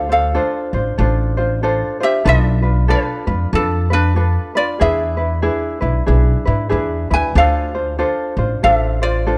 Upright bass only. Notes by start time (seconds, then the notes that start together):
Already playing: D2
0.73 A1
0.99 A1
2.26 B1
3.27 F2
3.53 F2
4.81 E2
5.82 B1
6.08 B1
6.47 G#2
6.72 E2
7.11 D2
7.35 D2
8.37 A1
8.64 A1